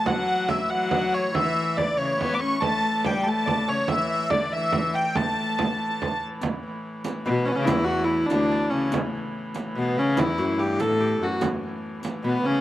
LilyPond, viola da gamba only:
\new Staff \with { instrumentName = "Viola da gamba" } { \clef bass \time 6/8 \key a \mixolydian \tempo 4. = 95 fis4. fis4. | e4. cis8 b8 cis'8 | a4 g8 a4 cis8 | e4 d8 e4. |
a2~ a8 r8 | r2 b,8. cis16 | e,4. d,4 cis8 | r2 b,8 cis8 |
e,8 fis,8 g,8 a,4 fis,8 | r2 b,8 cis8 | }